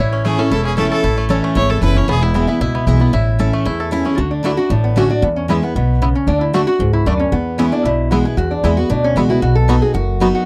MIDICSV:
0, 0, Header, 1, 6, 480
1, 0, Start_track
1, 0, Key_signature, 3, "major"
1, 0, Tempo, 262009
1, 1896, Time_signature, 4, 2, 24, 8
1, 19152, End_track
2, 0, Start_track
2, 0, Title_t, "Fiddle"
2, 0, Program_c, 0, 110
2, 456, Note_on_c, 0, 68, 100
2, 712, Note_on_c, 0, 69, 107
2, 740, Note_off_c, 0, 68, 0
2, 929, Note_off_c, 0, 69, 0
2, 940, Note_on_c, 0, 69, 99
2, 1171, Note_off_c, 0, 69, 0
2, 1191, Note_on_c, 0, 68, 107
2, 1403, Note_off_c, 0, 68, 0
2, 1412, Note_on_c, 0, 69, 109
2, 1647, Note_off_c, 0, 69, 0
2, 1671, Note_on_c, 0, 69, 98
2, 2223, Note_off_c, 0, 69, 0
2, 2849, Note_on_c, 0, 73, 106
2, 3109, Note_on_c, 0, 69, 108
2, 3137, Note_off_c, 0, 73, 0
2, 3334, Note_off_c, 0, 69, 0
2, 3345, Note_on_c, 0, 71, 101
2, 3617, Note_on_c, 0, 73, 103
2, 3644, Note_off_c, 0, 71, 0
2, 3833, Note_off_c, 0, 73, 0
2, 3845, Note_on_c, 0, 68, 106
2, 4079, Note_on_c, 0, 64, 88
2, 4106, Note_off_c, 0, 68, 0
2, 4429, Note_off_c, 0, 64, 0
2, 19152, End_track
3, 0, Start_track
3, 0, Title_t, "Resonator guitar played with a steel bar"
3, 0, Program_c, 1, 25
3, 0, Note_on_c, 1, 73, 97
3, 2360, Note_off_c, 1, 73, 0
3, 2382, Note_on_c, 1, 73, 93
3, 4479, Note_off_c, 1, 73, 0
3, 4544, Note_on_c, 1, 76, 91
3, 5717, Note_off_c, 1, 76, 0
3, 5739, Note_on_c, 1, 76, 94
3, 7107, Note_off_c, 1, 76, 0
3, 7424, Note_on_c, 1, 68, 87
3, 7588, Note_off_c, 1, 68, 0
3, 7601, Note_on_c, 1, 65, 78
3, 7649, Note_on_c, 1, 66, 95
3, 7660, Note_off_c, 1, 65, 0
3, 7887, Note_off_c, 1, 66, 0
3, 7892, Note_on_c, 1, 62, 74
3, 8115, Note_off_c, 1, 62, 0
3, 8129, Note_on_c, 1, 64, 77
3, 8367, Note_off_c, 1, 64, 0
3, 8380, Note_on_c, 1, 66, 96
3, 8613, Note_on_c, 1, 62, 81
3, 8623, Note_off_c, 1, 66, 0
3, 8849, Note_off_c, 1, 62, 0
3, 8865, Note_on_c, 1, 59, 91
3, 9082, Note_off_c, 1, 59, 0
3, 9101, Note_on_c, 1, 61, 90
3, 9334, Note_off_c, 1, 61, 0
3, 9353, Note_on_c, 1, 62, 85
3, 9566, Note_off_c, 1, 62, 0
3, 9576, Note_on_c, 1, 59, 97
3, 9667, Note_off_c, 1, 59, 0
3, 9824, Note_on_c, 1, 61, 78
3, 10031, Note_off_c, 1, 61, 0
3, 10053, Note_on_c, 1, 61, 87
3, 10289, Note_off_c, 1, 61, 0
3, 10323, Note_on_c, 1, 59, 93
3, 10531, Note_off_c, 1, 59, 0
3, 10551, Note_on_c, 1, 59, 94
3, 11225, Note_off_c, 1, 59, 0
3, 11274, Note_on_c, 1, 61, 95
3, 11497, Note_on_c, 1, 62, 96
3, 11509, Note_off_c, 1, 61, 0
3, 11742, Note_on_c, 1, 64, 86
3, 11756, Note_off_c, 1, 62, 0
3, 11977, Note_off_c, 1, 64, 0
3, 11985, Note_on_c, 1, 66, 105
3, 12198, Note_off_c, 1, 66, 0
3, 12220, Note_on_c, 1, 66, 110
3, 12671, Note_off_c, 1, 66, 0
3, 12702, Note_on_c, 1, 64, 101
3, 12920, Note_off_c, 1, 64, 0
3, 12953, Note_on_c, 1, 62, 89
3, 13180, Note_off_c, 1, 62, 0
3, 13183, Note_on_c, 1, 61, 86
3, 13418, Note_on_c, 1, 59, 101
3, 13423, Note_off_c, 1, 61, 0
3, 13865, Note_off_c, 1, 59, 0
3, 13890, Note_on_c, 1, 61, 90
3, 14151, Note_on_c, 1, 62, 96
3, 14153, Note_off_c, 1, 61, 0
3, 14384, Note_on_c, 1, 64, 102
3, 14387, Note_off_c, 1, 62, 0
3, 14854, Note_on_c, 1, 66, 96
3, 14876, Note_off_c, 1, 64, 0
3, 15089, Note_off_c, 1, 66, 0
3, 15118, Note_on_c, 1, 68, 94
3, 15330, Note_off_c, 1, 68, 0
3, 15337, Note_on_c, 1, 66, 115
3, 15588, Note_on_c, 1, 62, 78
3, 15596, Note_off_c, 1, 66, 0
3, 15803, Note_off_c, 1, 62, 0
3, 15821, Note_on_c, 1, 64, 100
3, 16066, Note_on_c, 1, 66, 97
3, 16078, Note_off_c, 1, 64, 0
3, 16282, Note_off_c, 1, 66, 0
3, 16310, Note_on_c, 1, 62, 95
3, 16538, Note_off_c, 1, 62, 0
3, 16568, Note_on_c, 1, 61, 113
3, 16774, Note_off_c, 1, 61, 0
3, 16788, Note_on_c, 1, 66, 92
3, 17017, Note_off_c, 1, 66, 0
3, 17038, Note_on_c, 1, 64, 95
3, 17252, Note_off_c, 1, 64, 0
3, 17259, Note_on_c, 1, 66, 105
3, 17492, Note_off_c, 1, 66, 0
3, 17503, Note_on_c, 1, 69, 105
3, 17981, Note_off_c, 1, 69, 0
3, 17988, Note_on_c, 1, 68, 106
3, 18200, Note_off_c, 1, 68, 0
3, 18208, Note_on_c, 1, 66, 104
3, 18892, Note_off_c, 1, 66, 0
3, 18956, Note_on_c, 1, 66, 99
3, 19152, Note_off_c, 1, 66, 0
3, 19152, End_track
4, 0, Start_track
4, 0, Title_t, "Five-string banjo"
4, 0, Program_c, 2, 105
4, 0, Note_on_c, 2, 64, 64
4, 231, Note_on_c, 2, 61, 54
4, 454, Note_on_c, 2, 57, 62
4, 690, Note_off_c, 2, 61, 0
4, 712, Note_on_c, 2, 61, 64
4, 934, Note_off_c, 2, 64, 0
4, 942, Note_on_c, 2, 64, 67
4, 1135, Note_off_c, 2, 57, 0
4, 1174, Note_off_c, 2, 61, 0
4, 1196, Note_on_c, 2, 61, 65
4, 1426, Note_on_c, 2, 57, 68
4, 1679, Note_on_c, 2, 69, 62
4, 1855, Note_off_c, 2, 61, 0
4, 1896, Note_off_c, 2, 64, 0
4, 1904, Note_on_c, 2, 64, 66
4, 2102, Note_off_c, 2, 57, 0
4, 2155, Note_on_c, 2, 57, 63
4, 2337, Note_off_c, 2, 69, 0
4, 2385, Note_on_c, 2, 69, 68
4, 2616, Note_off_c, 2, 57, 0
4, 2638, Note_on_c, 2, 57, 73
4, 2865, Note_off_c, 2, 64, 0
4, 2872, Note_on_c, 2, 64, 66
4, 3062, Note_off_c, 2, 69, 0
4, 3114, Note_on_c, 2, 69, 59
4, 3297, Note_off_c, 2, 57, 0
4, 3341, Note_off_c, 2, 64, 0
4, 3348, Note_on_c, 2, 64, 63
4, 3598, Note_on_c, 2, 61, 57
4, 3776, Note_off_c, 2, 69, 0
4, 3824, Note_off_c, 2, 61, 0
4, 3829, Note_on_c, 2, 59, 79
4, 4071, Note_off_c, 2, 64, 0
4, 4079, Note_on_c, 2, 64, 68
4, 4283, Note_off_c, 2, 59, 0
4, 4305, Note_on_c, 2, 59, 65
4, 4534, Note_off_c, 2, 64, 0
4, 4556, Note_on_c, 2, 64, 57
4, 4765, Note_off_c, 2, 64, 0
4, 4787, Note_on_c, 2, 64, 70
4, 4983, Note_off_c, 2, 59, 0
4, 5034, Note_on_c, 2, 59, 63
4, 5240, Note_off_c, 2, 64, 0
4, 5262, Note_on_c, 2, 64, 60
4, 5491, Note_off_c, 2, 59, 0
4, 5513, Note_on_c, 2, 59, 58
4, 5724, Note_off_c, 2, 64, 0
4, 5741, Note_off_c, 2, 59, 0
4, 5746, Note_on_c, 2, 64, 67
4, 6224, Note_on_c, 2, 69, 63
4, 6423, Note_off_c, 2, 64, 0
4, 6474, Note_on_c, 2, 57, 72
4, 6710, Note_on_c, 2, 64, 70
4, 6903, Note_off_c, 2, 69, 0
4, 6961, Note_on_c, 2, 69, 69
4, 7136, Note_off_c, 2, 57, 0
4, 7163, Note_off_c, 2, 64, 0
4, 7185, Note_on_c, 2, 64, 61
4, 7429, Note_on_c, 2, 61, 53
4, 7620, Note_off_c, 2, 69, 0
4, 7660, Note_off_c, 2, 61, 0
4, 7663, Note_off_c, 2, 64, 0
4, 8159, Note_on_c, 2, 57, 71
4, 8164, Note_on_c, 2, 62, 73
4, 8170, Note_on_c, 2, 66, 64
4, 8260, Note_off_c, 2, 57, 0
4, 8262, Note_off_c, 2, 62, 0
4, 8266, Note_off_c, 2, 66, 0
4, 9111, Note_on_c, 2, 57, 60
4, 9115, Note_on_c, 2, 62, 63
4, 9121, Note_on_c, 2, 66, 71
4, 9217, Note_off_c, 2, 57, 0
4, 9217, Note_off_c, 2, 62, 0
4, 9221, Note_off_c, 2, 66, 0
4, 10071, Note_on_c, 2, 59, 76
4, 10086, Note_on_c, 2, 64, 71
4, 10123, Note_off_c, 2, 64, 0
4, 10177, Note_off_c, 2, 59, 0
4, 11028, Note_on_c, 2, 59, 66
4, 11039, Note_on_c, 2, 64, 64
4, 11076, Note_off_c, 2, 64, 0
4, 11135, Note_off_c, 2, 59, 0
4, 11985, Note_on_c, 2, 57, 75
4, 11996, Note_on_c, 2, 62, 67
4, 11997, Note_on_c, 2, 66, 76
4, 12094, Note_off_c, 2, 57, 0
4, 12096, Note_off_c, 2, 62, 0
4, 12099, Note_off_c, 2, 66, 0
4, 12949, Note_on_c, 2, 57, 67
4, 12957, Note_on_c, 2, 62, 64
4, 12967, Note_on_c, 2, 66, 64
4, 13055, Note_off_c, 2, 57, 0
4, 13060, Note_off_c, 2, 62, 0
4, 13062, Note_off_c, 2, 66, 0
4, 13903, Note_on_c, 2, 59, 70
4, 13911, Note_on_c, 2, 64, 75
4, 13948, Note_off_c, 2, 64, 0
4, 14011, Note_off_c, 2, 59, 0
4, 14874, Note_on_c, 2, 59, 66
4, 14882, Note_on_c, 2, 64, 61
4, 14919, Note_off_c, 2, 64, 0
4, 14977, Note_off_c, 2, 59, 0
4, 15828, Note_on_c, 2, 59, 68
4, 15842, Note_on_c, 2, 64, 71
4, 15878, Note_off_c, 2, 64, 0
4, 15936, Note_off_c, 2, 59, 0
4, 16796, Note_on_c, 2, 59, 63
4, 16804, Note_on_c, 2, 64, 67
4, 16840, Note_off_c, 2, 64, 0
4, 16899, Note_off_c, 2, 59, 0
4, 17748, Note_on_c, 2, 59, 75
4, 17755, Note_on_c, 2, 63, 68
4, 17764, Note_on_c, 2, 66, 79
4, 17855, Note_off_c, 2, 59, 0
4, 17857, Note_off_c, 2, 63, 0
4, 17859, Note_off_c, 2, 66, 0
4, 18711, Note_on_c, 2, 59, 73
4, 18720, Note_on_c, 2, 63, 69
4, 18728, Note_on_c, 2, 66, 71
4, 18815, Note_off_c, 2, 59, 0
4, 18821, Note_off_c, 2, 63, 0
4, 18822, Note_off_c, 2, 66, 0
4, 19152, End_track
5, 0, Start_track
5, 0, Title_t, "Steel-string acoustic guitar"
5, 0, Program_c, 3, 25
5, 0, Note_on_c, 3, 45, 98
5, 451, Note_on_c, 3, 52, 79
5, 466, Note_on_c, 3, 57, 74
5, 476, Note_on_c, 3, 61, 79
5, 486, Note_on_c, 3, 64, 84
5, 680, Note_off_c, 3, 64, 0
5, 693, Note_off_c, 3, 52, 0
5, 701, Note_off_c, 3, 57, 0
5, 702, Note_on_c, 3, 64, 60
5, 706, Note_off_c, 3, 61, 0
5, 736, Note_on_c, 3, 61, 52
5, 893, Note_off_c, 3, 45, 0
5, 925, Note_off_c, 3, 64, 0
5, 942, Note_off_c, 3, 61, 0
5, 944, Note_on_c, 3, 40, 99
5, 1407, Note_on_c, 3, 52, 77
5, 1422, Note_on_c, 3, 57, 83
5, 1431, Note_on_c, 3, 61, 82
5, 1442, Note_on_c, 3, 64, 99
5, 1855, Note_off_c, 3, 40, 0
5, 1869, Note_off_c, 3, 52, 0
5, 1877, Note_off_c, 3, 57, 0
5, 1881, Note_off_c, 3, 61, 0
5, 1887, Note_off_c, 3, 64, 0
5, 1902, Note_on_c, 3, 45, 93
5, 2360, Note_on_c, 3, 52, 90
5, 2374, Note_on_c, 3, 57, 93
5, 2384, Note_on_c, 3, 61, 92
5, 2397, Note_on_c, 3, 64, 83
5, 2814, Note_off_c, 3, 45, 0
5, 2826, Note_off_c, 3, 52, 0
5, 2833, Note_off_c, 3, 57, 0
5, 2838, Note_off_c, 3, 61, 0
5, 2844, Note_on_c, 3, 40, 104
5, 2845, Note_off_c, 3, 64, 0
5, 3328, Note_on_c, 3, 52, 83
5, 3342, Note_on_c, 3, 57, 90
5, 3357, Note_on_c, 3, 61, 88
5, 3364, Note_on_c, 3, 64, 102
5, 3553, Note_off_c, 3, 64, 0
5, 3573, Note_off_c, 3, 52, 0
5, 3575, Note_on_c, 3, 64, 69
5, 3580, Note_off_c, 3, 57, 0
5, 3588, Note_off_c, 3, 61, 0
5, 3609, Note_on_c, 3, 61, 50
5, 3765, Note_off_c, 3, 40, 0
5, 3803, Note_off_c, 3, 64, 0
5, 3808, Note_on_c, 3, 40, 101
5, 3820, Note_off_c, 3, 61, 0
5, 4291, Note_on_c, 3, 52, 91
5, 4309, Note_on_c, 3, 56, 89
5, 4318, Note_on_c, 3, 59, 82
5, 4323, Note_on_c, 3, 64, 88
5, 4510, Note_off_c, 3, 64, 0
5, 4532, Note_on_c, 3, 64, 69
5, 4535, Note_off_c, 3, 52, 0
5, 4544, Note_off_c, 3, 56, 0
5, 4544, Note_off_c, 3, 59, 0
5, 4566, Note_on_c, 3, 59, 51
5, 4728, Note_off_c, 3, 40, 0
5, 4762, Note_off_c, 3, 64, 0
5, 4779, Note_off_c, 3, 59, 0
5, 4782, Note_on_c, 3, 47, 103
5, 5255, Note_on_c, 3, 52, 72
5, 5268, Note_on_c, 3, 56, 100
5, 5279, Note_on_c, 3, 59, 83
5, 5286, Note_on_c, 3, 64, 109
5, 5469, Note_off_c, 3, 64, 0
5, 5491, Note_on_c, 3, 64, 66
5, 5498, Note_off_c, 3, 52, 0
5, 5501, Note_off_c, 3, 59, 0
5, 5504, Note_off_c, 3, 56, 0
5, 5523, Note_on_c, 3, 59, 56
5, 5695, Note_off_c, 3, 47, 0
5, 5722, Note_off_c, 3, 64, 0
5, 5735, Note_on_c, 3, 45, 100
5, 5737, Note_off_c, 3, 59, 0
5, 6201, Note_on_c, 3, 52, 74
5, 6214, Note_on_c, 3, 57, 100
5, 6232, Note_on_c, 3, 61, 89
5, 6233, Note_on_c, 3, 64, 92
5, 6652, Note_off_c, 3, 45, 0
5, 6668, Note_off_c, 3, 52, 0
5, 6674, Note_off_c, 3, 57, 0
5, 6683, Note_off_c, 3, 61, 0
5, 6684, Note_off_c, 3, 64, 0
5, 6694, Note_on_c, 3, 40, 95
5, 7164, Note_on_c, 3, 52, 86
5, 7177, Note_on_c, 3, 57, 84
5, 7188, Note_on_c, 3, 61, 88
5, 7195, Note_on_c, 3, 64, 105
5, 7390, Note_off_c, 3, 64, 0
5, 7412, Note_on_c, 3, 64, 63
5, 7413, Note_off_c, 3, 52, 0
5, 7419, Note_off_c, 3, 57, 0
5, 7420, Note_off_c, 3, 61, 0
5, 7442, Note_on_c, 3, 61, 48
5, 7612, Note_off_c, 3, 40, 0
5, 7643, Note_off_c, 3, 64, 0
5, 7654, Note_on_c, 3, 50, 94
5, 7657, Note_off_c, 3, 61, 0
5, 8090, Note_off_c, 3, 50, 0
5, 8112, Note_on_c, 3, 50, 81
5, 8133, Note_on_c, 3, 57, 98
5, 8141, Note_on_c, 3, 62, 88
5, 8149, Note_on_c, 3, 66, 99
5, 8348, Note_off_c, 3, 66, 0
5, 8367, Note_off_c, 3, 50, 0
5, 8370, Note_on_c, 3, 66, 72
5, 8377, Note_off_c, 3, 57, 0
5, 8381, Note_off_c, 3, 62, 0
5, 8403, Note_on_c, 3, 62, 55
5, 8601, Note_off_c, 3, 66, 0
5, 8614, Note_on_c, 3, 45, 105
5, 8618, Note_off_c, 3, 62, 0
5, 9082, Note_on_c, 3, 50, 97
5, 9097, Note_on_c, 3, 57, 83
5, 9109, Note_on_c, 3, 62, 104
5, 9116, Note_on_c, 3, 66, 104
5, 9314, Note_off_c, 3, 66, 0
5, 9332, Note_off_c, 3, 50, 0
5, 9335, Note_on_c, 3, 66, 66
5, 9339, Note_off_c, 3, 57, 0
5, 9345, Note_off_c, 3, 62, 0
5, 9366, Note_on_c, 3, 62, 46
5, 9532, Note_off_c, 3, 45, 0
5, 9564, Note_off_c, 3, 66, 0
5, 9569, Note_on_c, 3, 40, 93
5, 9579, Note_off_c, 3, 62, 0
5, 10043, Note_on_c, 3, 52, 86
5, 10061, Note_on_c, 3, 56, 83
5, 10070, Note_on_c, 3, 59, 77
5, 10080, Note_on_c, 3, 64, 97
5, 10278, Note_off_c, 3, 64, 0
5, 10292, Note_off_c, 3, 52, 0
5, 10300, Note_on_c, 3, 64, 62
5, 10301, Note_off_c, 3, 56, 0
5, 10305, Note_off_c, 3, 59, 0
5, 10337, Note_on_c, 3, 59, 56
5, 10489, Note_off_c, 3, 40, 0
5, 10526, Note_off_c, 3, 64, 0
5, 10545, Note_off_c, 3, 59, 0
5, 10551, Note_on_c, 3, 47, 101
5, 11003, Note_off_c, 3, 47, 0
5, 11023, Note_on_c, 3, 49, 80
5, 11479, Note_off_c, 3, 49, 0
5, 11497, Note_on_c, 3, 50, 94
5, 11949, Note_off_c, 3, 50, 0
5, 11971, Note_on_c, 3, 50, 88
5, 11979, Note_on_c, 3, 57, 87
5, 11990, Note_on_c, 3, 62, 86
5, 12008, Note_on_c, 3, 66, 100
5, 12196, Note_off_c, 3, 66, 0
5, 12216, Note_off_c, 3, 50, 0
5, 12218, Note_on_c, 3, 66, 71
5, 12220, Note_off_c, 3, 57, 0
5, 12225, Note_off_c, 3, 62, 0
5, 12251, Note_on_c, 3, 62, 56
5, 12445, Note_off_c, 3, 66, 0
5, 12456, Note_on_c, 3, 44, 99
5, 12461, Note_off_c, 3, 62, 0
5, 12915, Note_off_c, 3, 44, 0
5, 12940, Note_on_c, 3, 42, 96
5, 13397, Note_off_c, 3, 42, 0
5, 13412, Note_on_c, 3, 40, 91
5, 13886, Note_on_c, 3, 52, 74
5, 13900, Note_on_c, 3, 56, 81
5, 13905, Note_on_c, 3, 59, 99
5, 13915, Note_on_c, 3, 64, 95
5, 14121, Note_off_c, 3, 64, 0
5, 14133, Note_off_c, 3, 52, 0
5, 14140, Note_off_c, 3, 56, 0
5, 14143, Note_off_c, 3, 59, 0
5, 14143, Note_on_c, 3, 64, 66
5, 14169, Note_on_c, 3, 59, 58
5, 14330, Note_off_c, 3, 40, 0
5, 14367, Note_off_c, 3, 64, 0
5, 14381, Note_off_c, 3, 59, 0
5, 14391, Note_on_c, 3, 47, 98
5, 14856, Note_on_c, 3, 52, 78
5, 14871, Note_on_c, 3, 56, 88
5, 14880, Note_on_c, 3, 59, 88
5, 14889, Note_on_c, 3, 64, 97
5, 15094, Note_off_c, 3, 64, 0
5, 15098, Note_off_c, 3, 52, 0
5, 15106, Note_off_c, 3, 56, 0
5, 15110, Note_off_c, 3, 59, 0
5, 15116, Note_on_c, 3, 64, 62
5, 15148, Note_on_c, 3, 59, 53
5, 15299, Note_off_c, 3, 47, 0
5, 15334, Note_off_c, 3, 64, 0
5, 15350, Note_off_c, 3, 59, 0
5, 15354, Note_on_c, 3, 40, 93
5, 15821, Note_on_c, 3, 52, 85
5, 15835, Note_on_c, 3, 56, 85
5, 15848, Note_on_c, 3, 59, 98
5, 15855, Note_on_c, 3, 66, 82
5, 16045, Note_off_c, 3, 66, 0
5, 16060, Note_off_c, 3, 52, 0
5, 16067, Note_off_c, 3, 56, 0
5, 16067, Note_on_c, 3, 66, 67
5, 16074, Note_off_c, 3, 59, 0
5, 16101, Note_on_c, 3, 59, 54
5, 16261, Note_off_c, 3, 40, 0
5, 16289, Note_off_c, 3, 66, 0
5, 16298, Note_on_c, 3, 47, 103
5, 16306, Note_off_c, 3, 59, 0
5, 16778, Note_on_c, 3, 52, 87
5, 16794, Note_on_c, 3, 56, 91
5, 16801, Note_on_c, 3, 59, 89
5, 16813, Note_on_c, 3, 66, 87
5, 17006, Note_off_c, 3, 66, 0
5, 17019, Note_off_c, 3, 52, 0
5, 17027, Note_off_c, 3, 56, 0
5, 17028, Note_on_c, 3, 66, 63
5, 17031, Note_off_c, 3, 59, 0
5, 17064, Note_on_c, 3, 59, 54
5, 17213, Note_off_c, 3, 47, 0
5, 17250, Note_off_c, 3, 66, 0
5, 17263, Note_on_c, 3, 47, 91
5, 17268, Note_off_c, 3, 59, 0
5, 17733, Note_on_c, 3, 54, 83
5, 17751, Note_on_c, 3, 59, 94
5, 17759, Note_on_c, 3, 63, 94
5, 17768, Note_on_c, 3, 66, 98
5, 17968, Note_off_c, 3, 66, 0
5, 17977, Note_off_c, 3, 54, 0
5, 17985, Note_off_c, 3, 59, 0
5, 17989, Note_off_c, 3, 63, 0
5, 17990, Note_on_c, 3, 66, 63
5, 18024, Note_on_c, 3, 63, 54
5, 18175, Note_off_c, 3, 47, 0
5, 18211, Note_off_c, 3, 66, 0
5, 18220, Note_on_c, 3, 42, 100
5, 18228, Note_off_c, 3, 63, 0
5, 18692, Note_on_c, 3, 54, 82
5, 18707, Note_on_c, 3, 59, 82
5, 18714, Note_on_c, 3, 63, 99
5, 18720, Note_on_c, 3, 66, 100
5, 19134, Note_off_c, 3, 42, 0
5, 19152, Note_off_c, 3, 54, 0
5, 19152, Note_off_c, 3, 59, 0
5, 19152, Note_off_c, 3, 63, 0
5, 19152, Note_off_c, 3, 66, 0
5, 19152, End_track
6, 0, Start_track
6, 0, Title_t, "Upright bass"
6, 0, Program_c, 4, 32
6, 0, Note_on_c, 4, 33, 89
6, 629, Note_off_c, 4, 33, 0
6, 932, Note_on_c, 4, 28, 85
6, 1592, Note_off_c, 4, 28, 0
6, 1896, Note_on_c, 4, 33, 84
6, 2555, Note_off_c, 4, 33, 0
6, 2849, Note_on_c, 4, 32, 91
6, 3262, Note_off_c, 4, 32, 0
6, 3330, Note_on_c, 4, 30, 85
6, 3742, Note_off_c, 4, 30, 0
6, 3810, Note_on_c, 4, 28, 89
6, 4471, Note_off_c, 4, 28, 0
6, 4774, Note_on_c, 4, 37, 84
6, 5185, Note_off_c, 4, 37, 0
6, 5246, Note_on_c, 4, 35, 91
6, 5661, Note_off_c, 4, 35, 0
6, 5741, Note_on_c, 4, 33, 97
6, 6399, Note_off_c, 4, 33, 0
6, 6701, Note_on_c, 4, 40, 79
6, 7359, Note_off_c, 4, 40, 0
6, 7655, Note_on_c, 4, 38, 89
6, 8315, Note_off_c, 4, 38, 0
6, 8609, Note_on_c, 4, 33, 88
6, 9271, Note_off_c, 4, 33, 0
6, 9571, Note_on_c, 4, 40, 91
6, 10232, Note_off_c, 4, 40, 0
6, 10542, Note_on_c, 4, 35, 89
6, 11200, Note_off_c, 4, 35, 0
6, 11484, Note_on_c, 4, 38, 95
6, 12147, Note_off_c, 4, 38, 0
6, 12447, Note_on_c, 4, 37, 85
6, 12861, Note_off_c, 4, 37, 0
6, 12932, Note_on_c, 4, 38, 86
6, 13344, Note_off_c, 4, 38, 0
6, 13410, Note_on_c, 4, 40, 93
6, 14072, Note_off_c, 4, 40, 0
6, 14375, Note_on_c, 4, 35, 75
6, 15035, Note_off_c, 4, 35, 0
6, 15332, Note_on_c, 4, 40, 93
6, 15664, Note_off_c, 4, 40, 0
6, 15820, Note_on_c, 4, 40, 85
6, 16228, Note_off_c, 4, 40, 0
6, 16308, Note_on_c, 4, 38, 80
6, 16712, Note_off_c, 4, 38, 0
6, 16775, Note_on_c, 4, 37, 82
6, 17185, Note_off_c, 4, 37, 0
6, 17257, Note_on_c, 4, 35, 92
6, 17916, Note_off_c, 4, 35, 0
6, 18217, Note_on_c, 4, 30, 87
6, 18876, Note_off_c, 4, 30, 0
6, 19152, End_track
0, 0, End_of_file